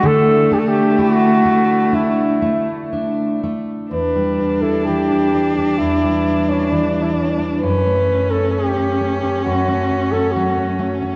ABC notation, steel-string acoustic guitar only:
X:1
M:4/4
L:1/16
Q:1/4=64
K:Edor
V:1 name="Steel-string acoustic guitar"
D,2 D2 E2 A,2 D2 A,2 D2 A,2 | E,, G, D E E, D G, D E,, G, D E E, D G, D | F,, A, C3 C A, C F,, A, C F F, C A, C |]